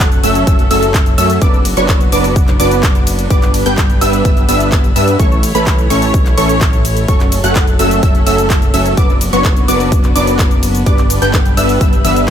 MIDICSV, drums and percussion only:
0, 0, Header, 1, 2, 480
1, 0, Start_track
1, 0, Key_signature, 2, "minor"
1, 0, Tempo, 472441
1, 1439, Time_signature, 4, 2, 24, 8
1, 12497, End_track
2, 0, Start_track
2, 0, Title_t, "Drums"
2, 3, Note_on_c, 9, 82, 49
2, 104, Note_off_c, 9, 82, 0
2, 119, Note_on_c, 9, 42, 39
2, 123, Note_on_c, 9, 82, 22
2, 221, Note_off_c, 9, 42, 0
2, 224, Note_off_c, 9, 82, 0
2, 239, Note_on_c, 9, 46, 113
2, 239, Note_on_c, 9, 51, 79
2, 242, Note_on_c, 9, 82, 78
2, 341, Note_off_c, 9, 46, 0
2, 341, Note_off_c, 9, 51, 0
2, 344, Note_off_c, 9, 82, 0
2, 359, Note_on_c, 9, 42, 55
2, 363, Note_on_c, 9, 82, 35
2, 461, Note_off_c, 9, 42, 0
2, 464, Note_off_c, 9, 82, 0
2, 479, Note_on_c, 9, 36, 127
2, 479, Note_on_c, 9, 42, 81
2, 482, Note_on_c, 9, 82, 43
2, 581, Note_off_c, 9, 36, 0
2, 581, Note_off_c, 9, 42, 0
2, 584, Note_off_c, 9, 82, 0
2, 599, Note_on_c, 9, 42, 38
2, 602, Note_on_c, 9, 82, 21
2, 701, Note_off_c, 9, 42, 0
2, 704, Note_off_c, 9, 82, 0
2, 718, Note_on_c, 9, 46, 107
2, 718, Note_on_c, 9, 51, 79
2, 722, Note_on_c, 9, 82, 79
2, 820, Note_off_c, 9, 46, 0
2, 820, Note_off_c, 9, 51, 0
2, 823, Note_off_c, 9, 82, 0
2, 839, Note_on_c, 9, 42, 55
2, 842, Note_on_c, 9, 82, 33
2, 941, Note_off_c, 9, 42, 0
2, 944, Note_off_c, 9, 82, 0
2, 958, Note_on_c, 9, 39, 127
2, 959, Note_on_c, 9, 36, 127
2, 959, Note_on_c, 9, 42, 86
2, 962, Note_on_c, 9, 82, 45
2, 1059, Note_off_c, 9, 39, 0
2, 1060, Note_off_c, 9, 42, 0
2, 1061, Note_off_c, 9, 36, 0
2, 1064, Note_off_c, 9, 82, 0
2, 1079, Note_on_c, 9, 42, 39
2, 1082, Note_on_c, 9, 82, 23
2, 1181, Note_off_c, 9, 42, 0
2, 1184, Note_off_c, 9, 82, 0
2, 1199, Note_on_c, 9, 46, 116
2, 1199, Note_on_c, 9, 51, 79
2, 1202, Note_on_c, 9, 82, 78
2, 1300, Note_off_c, 9, 46, 0
2, 1300, Note_off_c, 9, 51, 0
2, 1304, Note_off_c, 9, 82, 0
2, 1318, Note_on_c, 9, 42, 53
2, 1322, Note_on_c, 9, 82, 33
2, 1420, Note_off_c, 9, 42, 0
2, 1423, Note_off_c, 9, 82, 0
2, 1438, Note_on_c, 9, 42, 85
2, 1439, Note_on_c, 9, 36, 127
2, 1442, Note_on_c, 9, 82, 46
2, 1540, Note_off_c, 9, 36, 0
2, 1540, Note_off_c, 9, 42, 0
2, 1543, Note_off_c, 9, 82, 0
2, 1562, Note_on_c, 9, 82, 21
2, 1663, Note_off_c, 9, 82, 0
2, 1678, Note_on_c, 9, 46, 121
2, 1678, Note_on_c, 9, 51, 86
2, 1681, Note_on_c, 9, 82, 80
2, 1779, Note_off_c, 9, 46, 0
2, 1779, Note_off_c, 9, 51, 0
2, 1783, Note_off_c, 9, 82, 0
2, 1798, Note_on_c, 9, 42, 52
2, 1801, Note_on_c, 9, 82, 31
2, 1900, Note_off_c, 9, 42, 0
2, 1903, Note_off_c, 9, 82, 0
2, 1917, Note_on_c, 9, 39, 127
2, 1918, Note_on_c, 9, 36, 122
2, 1919, Note_on_c, 9, 42, 82
2, 1922, Note_on_c, 9, 82, 46
2, 2019, Note_off_c, 9, 39, 0
2, 2020, Note_off_c, 9, 36, 0
2, 2020, Note_off_c, 9, 42, 0
2, 2023, Note_off_c, 9, 82, 0
2, 2038, Note_on_c, 9, 42, 38
2, 2042, Note_on_c, 9, 82, 23
2, 2140, Note_off_c, 9, 42, 0
2, 2143, Note_off_c, 9, 82, 0
2, 2157, Note_on_c, 9, 46, 114
2, 2157, Note_on_c, 9, 51, 76
2, 2161, Note_on_c, 9, 82, 75
2, 2259, Note_off_c, 9, 46, 0
2, 2259, Note_off_c, 9, 51, 0
2, 2262, Note_off_c, 9, 82, 0
2, 2278, Note_on_c, 9, 46, 64
2, 2281, Note_on_c, 9, 82, 34
2, 2380, Note_off_c, 9, 46, 0
2, 2383, Note_off_c, 9, 82, 0
2, 2398, Note_on_c, 9, 36, 127
2, 2398, Note_on_c, 9, 42, 79
2, 2401, Note_on_c, 9, 82, 41
2, 2500, Note_off_c, 9, 36, 0
2, 2500, Note_off_c, 9, 42, 0
2, 2503, Note_off_c, 9, 82, 0
2, 2517, Note_on_c, 9, 39, 38
2, 2518, Note_on_c, 9, 42, 34
2, 2522, Note_on_c, 9, 82, 21
2, 2619, Note_off_c, 9, 39, 0
2, 2620, Note_off_c, 9, 42, 0
2, 2623, Note_off_c, 9, 82, 0
2, 2638, Note_on_c, 9, 46, 110
2, 2638, Note_on_c, 9, 51, 79
2, 2642, Note_on_c, 9, 82, 77
2, 2740, Note_off_c, 9, 46, 0
2, 2740, Note_off_c, 9, 51, 0
2, 2743, Note_off_c, 9, 82, 0
2, 2758, Note_on_c, 9, 42, 54
2, 2761, Note_on_c, 9, 82, 34
2, 2859, Note_off_c, 9, 42, 0
2, 2863, Note_off_c, 9, 82, 0
2, 2877, Note_on_c, 9, 39, 127
2, 2878, Note_on_c, 9, 36, 124
2, 2878, Note_on_c, 9, 42, 85
2, 2881, Note_on_c, 9, 82, 46
2, 2978, Note_off_c, 9, 39, 0
2, 2979, Note_off_c, 9, 36, 0
2, 2979, Note_off_c, 9, 42, 0
2, 2983, Note_off_c, 9, 82, 0
2, 2998, Note_on_c, 9, 42, 36
2, 3002, Note_on_c, 9, 82, 22
2, 3100, Note_off_c, 9, 42, 0
2, 3103, Note_off_c, 9, 82, 0
2, 3118, Note_on_c, 9, 46, 118
2, 3118, Note_on_c, 9, 51, 83
2, 3121, Note_on_c, 9, 82, 76
2, 3219, Note_off_c, 9, 46, 0
2, 3219, Note_off_c, 9, 51, 0
2, 3223, Note_off_c, 9, 82, 0
2, 3238, Note_on_c, 9, 42, 54
2, 3241, Note_on_c, 9, 82, 32
2, 3340, Note_off_c, 9, 42, 0
2, 3343, Note_off_c, 9, 82, 0
2, 3357, Note_on_c, 9, 42, 81
2, 3358, Note_on_c, 9, 36, 126
2, 3361, Note_on_c, 9, 82, 46
2, 3459, Note_off_c, 9, 36, 0
2, 3459, Note_off_c, 9, 42, 0
2, 3462, Note_off_c, 9, 82, 0
2, 3476, Note_on_c, 9, 39, 37
2, 3477, Note_on_c, 9, 42, 35
2, 3481, Note_on_c, 9, 82, 22
2, 3578, Note_off_c, 9, 39, 0
2, 3579, Note_off_c, 9, 42, 0
2, 3582, Note_off_c, 9, 82, 0
2, 3597, Note_on_c, 9, 46, 115
2, 3597, Note_on_c, 9, 51, 86
2, 3600, Note_on_c, 9, 82, 78
2, 3699, Note_off_c, 9, 46, 0
2, 3699, Note_off_c, 9, 51, 0
2, 3702, Note_off_c, 9, 82, 0
2, 3717, Note_on_c, 9, 42, 51
2, 3721, Note_on_c, 9, 82, 33
2, 3819, Note_off_c, 9, 42, 0
2, 3822, Note_off_c, 9, 82, 0
2, 3837, Note_on_c, 9, 39, 122
2, 3838, Note_on_c, 9, 36, 126
2, 3838, Note_on_c, 9, 42, 84
2, 3841, Note_on_c, 9, 82, 46
2, 3938, Note_off_c, 9, 39, 0
2, 3939, Note_off_c, 9, 42, 0
2, 3940, Note_off_c, 9, 36, 0
2, 3943, Note_off_c, 9, 82, 0
2, 3958, Note_on_c, 9, 42, 37
2, 3962, Note_on_c, 9, 82, 23
2, 4060, Note_off_c, 9, 42, 0
2, 4063, Note_off_c, 9, 82, 0
2, 4078, Note_on_c, 9, 46, 111
2, 4078, Note_on_c, 9, 51, 84
2, 4081, Note_on_c, 9, 82, 76
2, 4180, Note_off_c, 9, 46, 0
2, 4180, Note_off_c, 9, 51, 0
2, 4183, Note_off_c, 9, 82, 0
2, 4199, Note_on_c, 9, 42, 50
2, 4202, Note_on_c, 9, 82, 33
2, 4300, Note_off_c, 9, 42, 0
2, 4304, Note_off_c, 9, 82, 0
2, 4318, Note_on_c, 9, 36, 127
2, 4318, Note_on_c, 9, 42, 75
2, 4321, Note_on_c, 9, 82, 44
2, 4420, Note_off_c, 9, 36, 0
2, 4420, Note_off_c, 9, 42, 0
2, 4423, Note_off_c, 9, 82, 0
2, 4438, Note_on_c, 9, 42, 35
2, 4442, Note_on_c, 9, 82, 22
2, 4540, Note_off_c, 9, 42, 0
2, 4543, Note_off_c, 9, 82, 0
2, 4558, Note_on_c, 9, 46, 114
2, 4558, Note_on_c, 9, 51, 79
2, 4561, Note_on_c, 9, 82, 74
2, 4660, Note_off_c, 9, 46, 0
2, 4660, Note_off_c, 9, 51, 0
2, 4663, Note_off_c, 9, 82, 0
2, 4678, Note_on_c, 9, 42, 52
2, 4682, Note_on_c, 9, 82, 35
2, 4780, Note_off_c, 9, 42, 0
2, 4783, Note_off_c, 9, 82, 0
2, 4797, Note_on_c, 9, 39, 126
2, 4798, Note_on_c, 9, 36, 127
2, 4798, Note_on_c, 9, 42, 79
2, 4802, Note_on_c, 9, 82, 49
2, 4899, Note_off_c, 9, 39, 0
2, 4900, Note_off_c, 9, 36, 0
2, 4900, Note_off_c, 9, 42, 0
2, 4903, Note_off_c, 9, 82, 0
2, 4919, Note_on_c, 9, 42, 37
2, 4922, Note_on_c, 9, 82, 23
2, 5020, Note_off_c, 9, 42, 0
2, 5024, Note_off_c, 9, 82, 0
2, 5039, Note_on_c, 9, 46, 112
2, 5039, Note_on_c, 9, 51, 82
2, 5042, Note_on_c, 9, 82, 79
2, 5140, Note_off_c, 9, 46, 0
2, 5140, Note_off_c, 9, 51, 0
2, 5144, Note_off_c, 9, 82, 0
2, 5159, Note_on_c, 9, 42, 51
2, 5162, Note_on_c, 9, 82, 33
2, 5260, Note_off_c, 9, 42, 0
2, 5263, Note_off_c, 9, 82, 0
2, 5278, Note_on_c, 9, 36, 124
2, 5278, Note_on_c, 9, 42, 83
2, 5282, Note_on_c, 9, 82, 49
2, 5380, Note_off_c, 9, 36, 0
2, 5380, Note_off_c, 9, 42, 0
2, 5383, Note_off_c, 9, 82, 0
2, 5402, Note_on_c, 9, 82, 23
2, 5503, Note_off_c, 9, 82, 0
2, 5518, Note_on_c, 9, 46, 114
2, 5518, Note_on_c, 9, 51, 90
2, 5522, Note_on_c, 9, 82, 84
2, 5620, Note_off_c, 9, 46, 0
2, 5620, Note_off_c, 9, 51, 0
2, 5623, Note_off_c, 9, 82, 0
2, 5638, Note_on_c, 9, 42, 50
2, 5641, Note_on_c, 9, 82, 34
2, 5740, Note_off_c, 9, 42, 0
2, 5743, Note_off_c, 9, 82, 0
2, 5757, Note_on_c, 9, 39, 123
2, 5758, Note_on_c, 9, 36, 124
2, 5758, Note_on_c, 9, 42, 82
2, 5761, Note_on_c, 9, 82, 49
2, 5858, Note_off_c, 9, 39, 0
2, 5859, Note_off_c, 9, 42, 0
2, 5860, Note_off_c, 9, 36, 0
2, 5863, Note_off_c, 9, 82, 0
2, 5878, Note_on_c, 9, 42, 39
2, 5881, Note_on_c, 9, 82, 24
2, 5979, Note_off_c, 9, 42, 0
2, 5983, Note_off_c, 9, 82, 0
2, 5998, Note_on_c, 9, 46, 102
2, 5998, Note_on_c, 9, 51, 85
2, 6001, Note_on_c, 9, 82, 81
2, 6099, Note_off_c, 9, 46, 0
2, 6099, Note_off_c, 9, 51, 0
2, 6103, Note_off_c, 9, 82, 0
2, 6118, Note_on_c, 9, 46, 61
2, 6121, Note_on_c, 9, 82, 35
2, 6219, Note_off_c, 9, 46, 0
2, 6222, Note_off_c, 9, 82, 0
2, 6238, Note_on_c, 9, 36, 126
2, 6238, Note_on_c, 9, 42, 76
2, 6241, Note_on_c, 9, 82, 46
2, 6339, Note_off_c, 9, 42, 0
2, 6340, Note_off_c, 9, 36, 0
2, 6343, Note_off_c, 9, 82, 0
2, 6357, Note_on_c, 9, 39, 35
2, 6358, Note_on_c, 9, 42, 35
2, 6361, Note_on_c, 9, 82, 23
2, 6459, Note_off_c, 9, 39, 0
2, 6460, Note_off_c, 9, 42, 0
2, 6463, Note_off_c, 9, 82, 0
2, 6478, Note_on_c, 9, 46, 108
2, 6478, Note_on_c, 9, 51, 87
2, 6481, Note_on_c, 9, 82, 79
2, 6579, Note_off_c, 9, 46, 0
2, 6579, Note_off_c, 9, 51, 0
2, 6583, Note_off_c, 9, 82, 0
2, 6598, Note_on_c, 9, 42, 53
2, 6601, Note_on_c, 9, 82, 35
2, 6699, Note_off_c, 9, 42, 0
2, 6703, Note_off_c, 9, 82, 0
2, 6717, Note_on_c, 9, 39, 120
2, 6718, Note_on_c, 9, 36, 127
2, 6718, Note_on_c, 9, 42, 80
2, 6721, Note_on_c, 9, 82, 49
2, 6819, Note_off_c, 9, 39, 0
2, 6820, Note_off_c, 9, 36, 0
2, 6820, Note_off_c, 9, 42, 0
2, 6823, Note_off_c, 9, 82, 0
2, 6838, Note_on_c, 9, 42, 38
2, 6842, Note_on_c, 9, 82, 23
2, 6940, Note_off_c, 9, 42, 0
2, 6943, Note_off_c, 9, 82, 0
2, 6958, Note_on_c, 9, 46, 108
2, 6958, Note_on_c, 9, 51, 85
2, 6962, Note_on_c, 9, 82, 86
2, 7060, Note_off_c, 9, 46, 0
2, 7060, Note_off_c, 9, 51, 0
2, 7063, Note_off_c, 9, 82, 0
2, 7078, Note_on_c, 9, 42, 52
2, 7081, Note_on_c, 9, 82, 35
2, 7179, Note_off_c, 9, 42, 0
2, 7183, Note_off_c, 9, 82, 0
2, 7198, Note_on_c, 9, 36, 121
2, 7198, Note_on_c, 9, 42, 86
2, 7201, Note_on_c, 9, 82, 51
2, 7299, Note_off_c, 9, 36, 0
2, 7299, Note_off_c, 9, 42, 0
2, 7302, Note_off_c, 9, 82, 0
2, 7317, Note_on_c, 9, 39, 35
2, 7318, Note_on_c, 9, 42, 36
2, 7321, Note_on_c, 9, 82, 23
2, 7418, Note_off_c, 9, 39, 0
2, 7419, Note_off_c, 9, 42, 0
2, 7423, Note_off_c, 9, 82, 0
2, 7437, Note_on_c, 9, 46, 111
2, 7437, Note_on_c, 9, 51, 88
2, 7440, Note_on_c, 9, 82, 87
2, 7539, Note_off_c, 9, 46, 0
2, 7539, Note_off_c, 9, 51, 0
2, 7542, Note_off_c, 9, 82, 0
2, 7558, Note_on_c, 9, 42, 53
2, 7561, Note_on_c, 9, 82, 35
2, 7659, Note_off_c, 9, 42, 0
2, 7662, Note_off_c, 9, 82, 0
2, 7676, Note_on_c, 9, 39, 126
2, 7677, Note_on_c, 9, 42, 86
2, 7678, Note_on_c, 9, 36, 118
2, 7680, Note_on_c, 9, 82, 53
2, 7778, Note_off_c, 9, 39, 0
2, 7779, Note_off_c, 9, 42, 0
2, 7780, Note_off_c, 9, 36, 0
2, 7782, Note_off_c, 9, 82, 0
2, 7797, Note_on_c, 9, 42, 38
2, 7801, Note_on_c, 9, 82, 26
2, 7899, Note_off_c, 9, 42, 0
2, 7902, Note_off_c, 9, 82, 0
2, 7917, Note_on_c, 9, 46, 103
2, 7917, Note_on_c, 9, 51, 84
2, 7921, Note_on_c, 9, 82, 83
2, 8019, Note_off_c, 9, 46, 0
2, 8019, Note_off_c, 9, 51, 0
2, 8022, Note_off_c, 9, 82, 0
2, 8038, Note_on_c, 9, 42, 52
2, 8041, Note_on_c, 9, 82, 35
2, 8140, Note_off_c, 9, 42, 0
2, 8143, Note_off_c, 9, 82, 0
2, 8158, Note_on_c, 9, 36, 125
2, 8158, Note_on_c, 9, 42, 82
2, 8161, Note_on_c, 9, 82, 47
2, 8259, Note_off_c, 9, 36, 0
2, 8260, Note_off_c, 9, 42, 0
2, 8263, Note_off_c, 9, 82, 0
2, 8278, Note_on_c, 9, 42, 37
2, 8282, Note_on_c, 9, 82, 23
2, 8380, Note_off_c, 9, 42, 0
2, 8383, Note_off_c, 9, 82, 0
2, 8398, Note_on_c, 9, 46, 106
2, 8398, Note_on_c, 9, 51, 82
2, 8401, Note_on_c, 9, 82, 82
2, 8499, Note_off_c, 9, 46, 0
2, 8499, Note_off_c, 9, 51, 0
2, 8503, Note_off_c, 9, 82, 0
2, 8518, Note_on_c, 9, 42, 56
2, 8522, Note_on_c, 9, 82, 37
2, 8620, Note_off_c, 9, 42, 0
2, 8623, Note_off_c, 9, 82, 0
2, 8637, Note_on_c, 9, 39, 119
2, 8638, Note_on_c, 9, 36, 116
2, 8638, Note_on_c, 9, 42, 83
2, 8642, Note_on_c, 9, 82, 52
2, 8739, Note_off_c, 9, 39, 0
2, 8740, Note_off_c, 9, 36, 0
2, 8740, Note_off_c, 9, 42, 0
2, 8743, Note_off_c, 9, 82, 0
2, 8758, Note_on_c, 9, 42, 37
2, 8761, Note_on_c, 9, 82, 24
2, 8859, Note_off_c, 9, 42, 0
2, 8863, Note_off_c, 9, 82, 0
2, 8878, Note_on_c, 9, 46, 108
2, 8878, Note_on_c, 9, 51, 84
2, 8881, Note_on_c, 9, 82, 84
2, 8979, Note_off_c, 9, 46, 0
2, 8979, Note_off_c, 9, 51, 0
2, 8983, Note_off_c, 9, 82, 0
2, 8998, Note_on_c, 9, 42, 52
2, 9001, Note_on_c, 9, 82, 36
2, 9100, Note_off_c, 9, 42, 0
2, 9103, Note_off_c, 9, 82, 0
2, 9118, Note_on_c, 9, 36, 114
2, 9118, Note_on_c, 9, 42, 87
2, 9121, Note_on_c, 9, 82, 54
2, 9219, Note_off_c, 9, 42, 0
2, 9220, Note_off_c, 9, 36, 0
2, 9223, Note_off_c, 9, 82, 0
2, 9242, Note_on_c, 9, 82, 23
2, 9343, Note_off_c, 9, 82, 0
2, 9358, Note_on_c, 9, 46, 103
2, 9358, Note_on_c, 9, 51, 86
2, 9361, Note_on_c, 9, 82, 91
2, 9459, Note_off_c, 9, 46, 0
2, 9459, Note_off_c, 9, 51, 0
2, 9463, Note_off_c, 9, 82, 0
2, 9479, Note_on_c, 9, 42, 53
2, 9482, Note_on_c, 9, 82, 35
2, 9580, Note_off_c, 9, 42, 0
2, 9584, Note_off_c, 9, 82, 0
2, 9597, Note_on_c, 9, 39, 125
2, 9598, Note_on_c, 9, 36, 116
2, 9598, Note_on_c, 9, 42, 90
2, 9602, Note_on_c, 9, 82, 53
2, 9699, Note_off_c, 9, 39, 0
2, 9700, Note_off_c, 9, 36, 0
2, 9700, Note_off_c, 9, 42, 0
2, 9703, Note_off_c, 9, 82, 0
2, 9718, Note_on_c, 9, 42, 40
2, 9722, Note_on_c, 9, 82, 25
2, 9820, Note_off_c, 9, 42, 0
2, 9823, Note_off_c, 9, 82, 0
2, 9839, Note_on_c, 9, 46, 100
2, 9839, Note_on_c, 9, 51, 78
2, 9842, Note_on_c, 9, 82, 79
2, 9940, Note_off_c, 9, 46, 0
2, 9940, Note_off_c, 9, 51, 0
2, 9944, Note_off_c, 9, 82, 0
2, 9959, Note_on_c, 9, 46, 58
2, 9962, Note_on_c, 9, 82, 36
2, 10060, Note_off_c, 9, 46, 0
2, 10064, Note_off_c, 9, 82, 0
2, 10078, Note_on_c, 9, 36, 120
2, 10078, Note_on_c, 9, 42, 81
2, 10082, Note_on_c, 9, 82, 49
2, 10180, Note_off_c, 9, 36, 0
2, 10180, Note_off_c, 9, 42, 0
2, 10183, Note_off_c, 9, 82, 0
2, 10197, Note_on_c, 9, 39, 37
2, 10198, Note_on_c, 9, 42, 39
2, 10202, Note_on_c, 9, 82, 23
2, 10299, Note_off_c, 9, 39, 0
2, 10300, Note_off_c, 9, 42, 0
2, 10303, Note_off_c, 9, 82, 0
2, 10318, Note_on_c, 9, 46, 101
2, 10318, Note_on_c, 9, 51, 82
2, 10322, Note_on_c, 9, 82, 84
2, 10420, Note_off_c, 9, 46, 0
2, 10420, Note_off_c, 9, 51, 0
2, 10423, Note_off_c, 9, 82, 0
2, 10438, Note_on_c, 9, 42, 58
2, 10441, Note_on_c, 9, 82, 37
2, 10540, Note_off_c, 9, 42, 0
2, 10543, Note_off_c, 9, 82, 0
2, 10557, Note_on_c, 9, 39, 127
2, 10558, Note_on_c, 9, 36, 118
2, 10558, Note_on_c, 9, 42, 87
2, 10562, Note_on_c, 9, 82, 51
2, 10659, Note_off_c, 9, 39, 0
2, 10660, Note_off_c, 9, 36, 0
2, 10660, Note_off_c, 9, 42, 0
2, 10663, Note_off_c, 9, 82, 0
2, 10678, Note_on_c, 9, 42, 39
2, 10682, Note_on_c, 9, 82, 25
2, 10780, Note_off_c, 9, 42, 0
2, 10783, Note_off_c, 9, 82, 0
2, 10798, Note_on_c, 9, 46, 102
2, 10798, Note_on_c, 9, 51, 87
2, 10801, Note_on_c, 9, 82, 87
2, 10900, Note_off_c, 9, 46, 0
2, 10900, Note_off_c, 9, 51, 0
2, 10903, Note_off_c, 9, 82, 0
2, 10919, Note_on_c, 9, 42, 55
2, 10922, Note_on_c, 9, 82, 37
2, 11020, Note_off_c, 9, 42, 0
2, 11024, Note_off_c, 9, 82, 0
2, 11038, Note_on_c, 9, 36, 118
2, 11039, Note_on_c, 9, 42, 89
2, 11042, Note_on_c, 9, 82, 52
2, 11140, Note_off_c, 9, 36, 0
2, 11140, Note_off_c, 9, 42, 0
2, 11143, Note_off_c, 9, 82, 0
2, 11158, Note_on_c, 9, 39, 37
2, 11158, Note_on_c, 9, 42, 40
2, 11162, Note_on_c, 9, 82, 24
2, 11259, Note_off_c, 9, 39, 0
2, 11260, Note_off_c, 9, 42, 0
2, 11263, Note_off_c, 9, 82, 0
2, 11278, Note_on_c, 9, 46, 112
2, 11278, Note_on_c, 9, 51, 82
2, 11282, Note_on_c, 9, 82, 87
2, 11380, Note_off_c, 9, 46, 0
2, 11380, Note_off_c, 9, 51, 0
2, 11383, Note_off_c, 9, 82, 0
2, 11399, Note_on_c, 9, 42, 56
2, 11402, Note_on_c, 9, 82, 36
2, 11500, Note_off_c, 9, 42, 0
2, 11503, Note_off_c, 9, 82, 0
2, 11518, Note_on_c, 9, 36, 114
2, 11518, Note_on_c, 9, 39, 127
2, 11519, Note_on_c, 9, 42, 88
2, 11522, Note_on_c, 9, 82, 50
2, 11619, Note_off_c, 9, 39, 0
2, 11620, Note_off_c, 9, 36, 0
2, 11620, Note_off_c, 9, 42, 0
2, 11624, Note_off_c, 9, 82, 0
2, 11639, Note_on_c, 9, 42, 40
2, 11642, Note_on_c, 9, 82, 26
2, 11740, Note_off_c, 9, 42, 0
2, 11744, Note_off_c, 9, 82, 0
2, 11758, Note_on_c, 9, 46, 105
2, 11758, Note_on_c, 9, 51, 77
2, 11761, Note_on_c, 9, 82, 83
2, 11860, Note_off_c, 9, 46, 0
2, 11860, Note_off_c, 9, 51, 0
2, 11863, Note_off_c, 9, 82, 0
2, 11879, Note_on_c, 9, 46, 59
2, 11882, Note_on_c, 9, 82, 35
2, 11980, Note_off_c, 9, 46, 0
2, 11984, Note_off_c, 9, 82, 0
2, 11998, Note_on_c, 9, 36, 120
2, 11999, Note_on_c, 9, 42, 82
2, 12003, Note_on_c, 9, 82, 46
2, 12100, Note_off_c, 9, 36, 0
2, 12101, Note_off_c, 9, 42, 0
2, 12104, Note_off_c, 9, 82, 0
2, 12119, Note_on_c, 9, 42, 38
2, 12122, Note_on_c, 9, 82, 24
2, 12220, Note_off_c, 9, 42, 0
2, 12223, Note_off_c, 9, 82, 0
2, 12239, Note_on_c, 9, 46, 106
2, 12239, Note_on_c, 9, 48, 60
2, 12239, Note_on_c, 9, 51, 80
2, 12242, Note_on_c, 9, 82, 79
2, 12341, Note_off_c, 9, 46, 0
2, 12341, Note_off_c, 9, 48, 0
2, 12341, Note_off_c, 9, 51, 0
2, 12344, Note_off_c, 9, 82, 0
2, 12359, Note_on_c, 9, 42, 58
2, 12363, Note_on_c, 9, 82, 37
2, 12461, Note_off_c, 9, 42, 0
2, 12464, Note_off_c, 9, 82, 0
2, 12497, End_track
0, 0, End_of_file